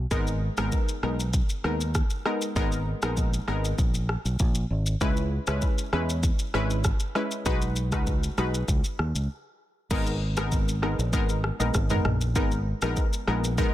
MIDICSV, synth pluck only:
0, 0, Header, 1, 2, 480
1, 0, Start_track
1, 0, Key_signature, 5, "minor"
1, 0, Tempo, 612245
1, 89, Time_signature, 4, 2, 24, 8
1, 10771, End_track
2, 0, Start_track
2, 0, Title_t, "Synth pluck"
2, 0, Program_c, 0, 84
2, 86, Note_on_c, 0, 56, 95
2, 87, Note_on_c, 0, 59, 83
2, 90, Note_on_c, 0, 63, 83
2, 91, Note_on_c, 0, 70, 101
2, 422, Note_off_c, 0, 56, 0
2, 423, Note_off_c, 0, 59, 0
2, 424, Note_off_c, 0, 63, 0
2, 425, Note_off_c, 0, 70, 0
2, 450, Note_on_c, 0, 56, 79
2, 452, Note_on_c, 0, 59, 70
2, 453, Note_on_c, 0, 63, 73
2, 455, Note_on_c, 0, 70, 89
2, 780, Note_off_c, 0, 56, 0
2, 780, Note_off_c, 0, 59, 0
2, 781, Note_off_c, 0, 63, 0
2, 782, Note_off_c, 0, 70, 0
2, 807, Note_on_c, 0, 56, 71
2, 809, Note_on_c, 0, 59, 71
2, 810, Note_on_c, 0, 63, 68
2, 812, Note_on_c, 0, 70, 83
2, 1030, Note_off_c, 0, 56, 0
2, 1030, Note_off_c, 0, 59, 0
2, 1031, Note_off_c, 0, 63, 0
2, 1032, Note_off_c, 0, 70, 0
2, 1287, Note_on_c, 0, 56, 76
2, 1288, Note_on_c, 0, 59, 68
2, 1291, Note_on_c, 0, 63, 68
2, 1292, Note_on_c, 0, 70, 81
2, 1457, Note_off_c, 0, 56, 0
2, 1458, Note_off_c, 0, 59, 0
2, 1459, Note_off_c, 0, 63, 0
2, 1460, Note_off_c, 0, 70, 0
2, 1768, Note_on_c, 0, 56, 75
2, 1770, Note_on_c, 0, 59, 74
2, 1771, Note_on_c, 0, 63, 73
2, 1772, Note_on_c, 0, 70, 89
2, 1990, Note_off_c, 0, 56, 0
2, 1991, Note_off_c, 0, 59, 0
2, 1992, Note_off_c, 0, 63, 0
2, 1992, Note_off_c, 0, 70, 0
2, 2007, Note_on_c, 0, 56, 93
2, 2009, Note_on_c, 0, 59, 84
2, 2010, Note_on_c, 0, 63, 85
2, 2012, Note_on_c, 0, 70, 99
2, 2343, Note_off_c, 0, 56, 0
2, 2344, Note_off_c, 0, 59, 0
2, 2344, Note_off_c, 0, 63, 0
2, 2345, Note_off_c, 0, 70, 0
2, 2371, Note_on_c, 0, 56, 81
2, 2372, Note_on_c, 0, 59, 75
2, 2375, Note_on_c, 0, 63, 74
2, 2376, Note_on_c, 0, 70, 88
2, 2700, Note_off_c, 0, 56, 0
2, 2701, Note_off_c, 0, 59, 0
2, 2702, Note_off_c, 0, 63, 0
2, 2703, Note_off_c, 0, 70, 0
2, 2725, Note_on_c, 0, 56, 77
2, 2726, Note_on_c, 0, 59, 71
2, 2728, Note_on_c, 0, 63, 65
2, 2730, Note_on_c, 0, 70, 80
2, 2948, Note_off_c, 0, 56, 0
2, 2949, Note_off_c, 0, 59, 0
2, 2950, Note_off_c, 0, 63, 0
2, 2951, Note_off_c, 0, 70, 0
2, 3926, Note_on_c, 0, 56, 92
2, 3928, Note_on_c, 0, 61, 84
2, 3929, Note_on_c, 0, 64, 89
2, 3931, Note_on_c, 0, 71, 105
2, 4262, Note_off_c, 0, 56, 0
2, 4263, Note_off_c, 0, 61, 0
2, 4264, Note_off_c, 0, 64, 0
2, 4265, Note_off_c, 0, 71, 0
2, 4290, Note_on_c, 0, 56, 78
2, 4292, Note_on_c, 0, 61, 72
2, 4293, Note_on_c, 0, 64, 73
2, 4295, Note_on_c, 0, 71, 90
2, 4619, Note_off_c, 0, 56, 0
2, 4620, Note_off_c, 0, 61, 0
2, 4621, Note_off_c, 0, 64, 0
2, 4622, Note_off_c, 0, 71, 0
2, 4646, Note_on_c, 0, 56, 76
2, 4648, Note_on_c, 0, 61, 69
2, 4648, Note_on_c, 0, 64, 69
2, 4650, Note_on_c, 0, 71, 83
2, 4869, Note_off_c, 0, 56, 0
2, 4870, Note_off_c, 0, 61, 0
2, 4870, Note_off_c, 0, 64, 0
2, 4871, Note_off_c, 0, 71, 0
2, 5127, Note_on_c, 0, 56, 74
2, 5128, Note_on_c, 0, 61, 69
2, 5130, Note_on_c, 0, 64, 71
2, 5131, Note_on_c, 0, 71, 83
2, 5297, Note_off_c, 0, 56, 0
2, 5298, Note_off_c, 0, 61, 0
2, 5299, Note_off_c, 0, 64, 0
2, 5300, Note_off_c, 0, 71, 0
2, 5607, Note_on_c, 0, 56, 78
2, 5608, Note_on_c, 0, 61, 69
2, 5610, Note_on_c, 0, 64, 72
2, 5611, Note_on_c, 0, 71, 87
2, 5830, Note_off_c, 0, 56, 0
2, 5830, Note_off_c, 0, 61, 0
2, 5831, Note_off_c, 0, 64, 0
2, 5832, Note_off_c, 0, 71, 0
2, 5846, Note_on_c, 0, 56, 96
2, 5847, Note_on_c, 0, 63, 86
2, 5849, Note_on_c, 0, 66, 86
2, 5851, Note_on_c, 0, 71, 106
2, 6182, Note_off_c, 0, 56, 0
2, 6183, Note_off_c, 0, 63, 0
2, 6184, Note_off_c, 0, 66, 0
2, 6185, Note_off_c, 0, 71, 0
2, 6212, Note_on_c, 0, 56, 79
2, 6213, Note_on_c, 0, 63, 72
2, 6215, Note_on_c, 0, 66, 73
2, 6217, Note_on_c, 0, 71, 87
2, 6540, Note_off_c, 0, 56, 0
2, 6541, Note_off_c, 0, 63, 0
2, 6542, Note_off_c, 0, 66, 0
2, 6543, Note_off_c, 0, 71, 0
2, 6568, Note_on_c, 0, 56, 75
2, 6570, Note_on_c, 0, 63, 71
2, 6571, Note_on_c, 0, 66, 70
2, 6573, Note_on_c, 0, 71, 86
2, 6790, Note_off_c, 0, 56, 0
2, 6791, Note_off_c, 0, 63, 0
2, 6792, Note_off_c, 0, 66, 0
2, 6792, Note_off_c, 0, 71, 0
2, 7767, Note_on_c, 0, 56, 95
2, 7768, Note_on_c, 0, 59, 86
2, 7770, Note_on_c, 0, 63, 88
2, 7771, Note_on_c, 0, 70, 104
2, 7937, Note_off_c, 0, 56, 0
2, 7938, Note_off_c, 0, 59, 0
2, 7939, Note_off_c, 0, 63, 0
2, 7939, Note_off_c, 0, 70, 0
2, 8130, Note_on_c, 0, 56, 77
2, 8131, Note_on_c, 0, 59, 72
2, 8133, Note_on_c, 0, 63, 70
2, 8135, Note_on_c, 0, 70, 90
2, 8295, Note_off_c, 0, 56, 0
2, 8296, Note_off_c, 0, 59, 0
2, 8297, Note_off_c, 0, 63, 0
2, 8298, Note_off_c, 0, 70, 0
2, 8485, Note_on_c, 0, 56, 76
2, 8487, Note_on_c, 0, 59, 70
2, 8489, Note_on_c, 0, 63, 70
2, 8490, Note_on_c, 0, 70, 84
2, 8657, Note_off_c, 0, 56, 0
2, 8657, Note_off_c, 0, 59, 0
2, 8658, Note_off_c, 0, 63, 0
2, 8659, Note_off_c, 0, 70, 0
2, 8726, Note_on_c, 0, 56, 100
2, 8728, Note_on_c, 0, 59, 87
2, 8729, Note_on_c, 0, 63, 89
2, 8731, Note_on_c, 0, 70, 106
2, 8897, Note_off_c, 0, 56, 0
2, 8898, Note_off_c, 0, 59, 0
2, 8898, Note_off_c, 0, 63, 0
2, 8899, Note_off_c, 0, 70, 0
2, 9091, Note_on_c, 0, 56, 77
2, 9092, Note_on_c, 0, 59, 73
2, 9094, Note_on_c, 0, 63, 76
2, 9096, Note_on_c, 0, 70, 88
2, 9256, Note_off_c, 0, 56, 0
2, 9256, Note_off_c, 0, 59, 0
2, 9257, Note_off_c, 0, 63, 0
2, 9258, Note_off_c, 0, 70, 0
2, 9330, Note_on_c, 0, 56, 80
2, 9333, Note_on_c, 0, 59, 71
2, 9334, Note_on_c, 0, 63, 70
2, 9336, Note_on_c, 0, 70, 83
2, 9496, Note_off_c, 0, 56, 0
2, 9497, Note_off_c, 0, 59, 0
2, 9498, Note_off_c, 0, 63, 0
2, 9498, Note_off_c, 0, 70, 0
2, 9687, Note_on_c, 0, 56, 91
2, 9688, Note_on_c, 0, 59, 89
2, 9690, Note_on_c, 0, 63, 87
2, 9690, Note_on_c, 0, 70, 105
2, 9857, Note_off_c, 0, 56, 0
2, 9858, Note_off_c, 0, 59, 0
2, 9859, Note_off_c, 0, 63, 0
2, 9859, Note_off_c, 0, 70, 0
2, 10051, Note_on_c, 0, 56, 80
2, 10053, Note_on_c, 0, 59, 74
2, 10056, Note_on_c, 0, 63, 76
2, 10057, Note_on_c, 0, 70, 90
2, 10216, Note_off_c, 0, 56, 0
2, 10217, Note_off_c, 0, 59, 0
2, 10218, Note_off_c, 0, 63, 0
2, 10219, Note_off_c, 0, 70, 0
2, 10407, Note_on_c, 0, 56, 77
2, 10408, Note_on_c, 0, 59, 73
2, 10409, Note_on_c, 0, 63, 69
2, 10411, Note_on_c, 0, 70, 84
2, 10577, Note_off_c, 0, 56, 0
2, 10578, Note_off_c, 0, 59, 0
2, 10579, Note_off_c, 0, 63, 0
2, 10579, Note_off_c, 0, 70, 0
2, 10646, Note_on_c, 0, 56, 96
2, 10648, Note_on_c, 0, 59, 88
2, 10649, Note_on_c, 0, 63, 87
2, 10650, Note_on_c, 0, 70, 106
2, 10771, Note_off_c, 0, 56, 0
2, 10771, Note_off_c, 0, 59, 0
2, 10771, Note_off_c, 0, 63, 0
2, 10771, Note_off_c, 0, 70, 0
2, 10771, End_track
0, 0, End_of_file